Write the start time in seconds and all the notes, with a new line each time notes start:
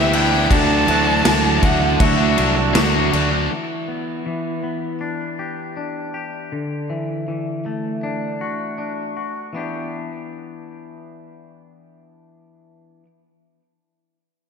Already playing: D2 E3 B3 D4 E4 G4 E5 B5 D6
0.12 E3 B3 D4 E4 G4 G5, crash
0.31 B3 E4 G4
0.49 D2 D3 F#3 A3 D4 F#4 A5, kick, crash
0.87 D2 E3 F#3 A3 D4 F#4, crash
1.05 A3 D4 F#4
1.23 D2 D3 E3 F#3 A3 D4 F#4, snare, crash
1.61 D2 F#3 A3 D4 F#4 F#5, kick, crash
1.80 D4 F#4, muted distorted electric guitar stroke
1.84 A3
2.00 D2 F#4 E5, kick, crash
2.17 A3 D4 F#4
2.37 C2 F#3 A3 D4 F#4, crash
2.55 A3 D4 F#4, muted distorted electric guitar stroke
2.75 D2 D3 F#3 A3 D4 F#4, snare, crash
2.94 A3 D4 F#4
3.13 D2 F#3 A3 D4 F#4, crash
3.31 A3 D4 F#4
3.50 E3
3.88 B3
4.26 E3
4.63 B3
5.01 D4
5.39 G4
5.77 D4
6.14 G4
6.52 D3
6.90 E3
7.28 E3
7.66 A3
8.03 D4
8.41 F#4
8.78 D4
9.17 F#4
9.53 E3 B3 D4
9.57 G4